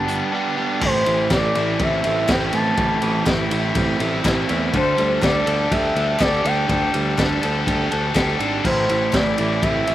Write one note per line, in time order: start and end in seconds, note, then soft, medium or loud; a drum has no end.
0.00 0.21 G1 medium
0.00 0.33 G2 medium
0.00 0.33 D3 medium
0.00 0.54 A5 loud
0.07 0.32 G3 medium
0.07 0.32 B3 medium
0.07 0.32 D4 medium
0.07 0.34 G4 medium
0.07 closed hi-hat medium
0.32 0.80 G2 medium
0.32 0.80 D3 medium
0.32 0.81 G3 medium
0.32 0.81 B3 loud
0.32 0.81 D4 loud
0.32 0.56 G4 medium
0.57 0.81 G3 medium
0.57 0.81 B3 medium
0.57 0.81 D4 medium
0.57 0.80 G4 medium
0.81 1.02 A1 medium
0.81 2.28 A2 medium
0.81 1.30 E3 loud
0.81 1.31 A3 loud
0.81 1.32 C4 loud
0.81 1.32 E4 loud
0.81 1.29 C5 medium
0.81 kick loud
0.81 crash loud
1.06 1.27 A1 medium
1.06 2.29 E3 medium
1.06 ride medium
1.30 1.51 A1 medium
1.30 2.29 E3 medium
1.30 1.57 A3 medium
1.30 1.56 C4 medium
1.30 1.55 E4 medium
1.30 1.73 D5 medium
1.30 kick loud
1.30 snare loud
1.30 clap medium
1.30 ride medium
1.55 1.76 A1 medium
1.55 2.29 A3 medium
1.55 2.28 C4 medium
1.55 2.29 E4 medium
1.55 ride medium
1.73 1.84 D5 medium
1.79 2.00 A1 medium
1.79 2.28 C4 medium
1.79 2.32 E5 medium
1.79 kick loud
1.79 ride medium
2.04 2.25 A1 medium
2.04 3.27 E4 medium
2.04 ride medium
2.28 2.49 A1 medium
2.28 2.76 A2 medium
2.28 2.77 E3 medium
2.28 2.55 A3 loud
2.28 2.53 C4 loud
2.28 2.52 E4 loud
2.28 2.54 G5 medium
2.28 kick loud
2.28 snare loud
2.28 clap medium
2.28 ride loud
2.53 2.73 A1 medium
2.53 2.79 A3 medium
2.53 2.78 C4 medium
2.53 2.79 E4 medium
2.53 3.23 A5 loud
2.53 ride medium
2.77 2.98 A1 medium
2.77 3.51 A2 medium
2.77 3.26 E3 medium
2.77 3.27 A3 loud
2.77 3.27 C4 loud
2.77 3.28 E4 loud
2.77 kick loud
2.77 ride medium
3.02 3.23 A1 medium
3.02 4.25 E3 medium
3.02 ride medium
3.26 3.47 A1 loud
3.26 3.76 E3 medium
3.26 3.53 A3 medium
3.26 3.52 C4 medium
3.26 3.51 E4 medium
3.26 kick loud
3.26 snare loud
3.26 clap medium
3.26 ride medium
3.51 3.71 A1 medium
3.51 4.25 A3 medium
3.51 4.25 C4 medium
3.51 4.25 E4 medium
3.51 ride medium
3.75 3.95 A1 loud
3.75 4.24 C4 medium
3.75 kick loud
3.75 ride loud
4.00 4.20 A1 medium
4.00 4.74 E4 medium
4.00 ride medium
4.24 4.44 A1 loud
4.24 4.72 A2 medium
4.24 4.73 E3 loud
4.24 4.50 A3 medium
4.24 4.49 C4 loud
4.24 4.48 E4 loud
4.24 kick loud
4.24 snare loud
4.24 clap medium
4.24 ride loud
4.49 4.69 E2 medium
4.49 4.74 A3 medium
4.49 4.73 C4 medium
4.49 4.72 E4 medium
4.49 ride medium
4.73 4.93 D2 medium
4.73 6.18 D3 medium
4.73 5.22 G3 medium
4.73 5.23 D4 loud
4.73 5.24 G4 loud
4.73 5.25 A4 loud
4.73 5.21 C5 medium
4.73 kick medium
4.73 ride medium
4.97 5.18 D2 medium
4.97 6.20 G3 medium
4.97 ride medium
5.22 5.42 D2 loud
5.22 6.19 G3 medium
5.22 5.49 D4 medium
5.22 5.48 G4 medium
5.22 5.47 A4 medium
5.22 5.73 D5 medium
5.22 kick loud
5.22 snare loud
5.22 clap medium
5.22 ride medium
5.47 5.67 D2 medium
5.47 6.19 D4 medium
5.47 6.19 G4 medium
5.47 6.21 A4 medium
5.47 ride medium
5.71 5.91 D2 medium
5.71 6.19 G4 medium
5.71 6.20 E5 loud
5.71 kick loud
5.71 ride medium
5.95 6.15 D2 medium
5.95 7.43 A4 medium
5.95 ride medium
6.19 6.40 D2 medium
6.19 6.67 D3 loud
6.19 6.67 G3 medium
6.19 6.45 D4 loud
6.19 6.44 G4 loud
6.19 6.44 A4 loud
6.19 6.47 D5 medium
6.19 kick loud
6.19 snare loud
6.19 clap medium
6.19 ride medium
6.44 6.64 D2 medium
6.44 6.68 D4 medium
6.44 6.68 G4 medium
6.44 6.70 A4 medium
6.44 7.19 G5 loud
6.44 snare soft
6.44 ride medium
6.68 6.89 D2 medium
6.68 7.42 D3 medium
6.68 7.16 G3 loud
6.68 7.17 D4 loud
6.68 7.17 G4 loud
6.68 7.19 A4 loud
6.68 kick loud
6.68 ride medium
6.94 7.14 D2 medium
6.94 8.16 G3 medium
6.94 ride medium
7.17 7.38 D2 medium
7.17 7.67 G3 medium
7.17 7.42 D4 medium
7.17 7.41 G4 medium
7.17 7.41 A4 medium
7.17 kick loud
7.17 snare loud
7.17 clap medium
7.17 ride medium
7.42 7.63 D2 medium
7.42 8.15 D4 soft
7.42 8.15 G4 medium
7.42 8.16 A4 medium
7.42 ride medium
7.67 7.87 D2 medium
7.67 8.15 G4 medium
7.67 kick loud
7.67 ride loud
7.91 8.12 D2 medium
7.91 9.95 A4 medium
7.91 ride medium
8.14 8.35 D2 medium
8.14 8.62 D3 medium
8.14 8.63 G3 medium
8.14 8.40 D4 loud
8.14 8.39 G4 loud
8.14 8.38 A4 loud
8.14 kick loud
8.14 snare loud
8.14 clap loud
8.14 ride medium
8.39 8.60 G#1 medium
8.39 8.64 D4 medium
8.39 8.63 G4 medium
8.39 9.95 A4 medium
8.39 ride medium
8.64 8.85 A1 medium
8.64 9.95 A2 medium
8.64 9.13 E3 medium
8.64 9.14 A3 loud
8.64 9.14 C4 medium
8.64 9.16 E4 loud
8.64 9.16 C5 medium
8.64 kick loud
8.64 crash medium
8.89 9.10 A1 medium
8.89 9.95 E3 medium
8.89 ride medium
9.13 9.34 A1 loud
9.13 9.95 E3 medium
9.13 9.39 A3 medium
9.13 9.38 C4 medium
9.13 9.38 E4 medium
9.13 9.64 D5 loud
9.13 kick loud
9.13 snare loud
9.13 clap medium
9.13 ride medium
9.38 9.58 A1 medium
9.38 9.95 A3 medium
9.38 9.95 C4 medium
9.38 9.95 E4 medium
9.38 ride medium
9.62 9.82 A1 medium
9.62 9.95 C4 medium
9.62 9.95 E5 loud
9.62 kick loud
9.62 ride medium
9.87 9.95 A1 medium
9.87 9.95 E4 medium
9.87 ride medium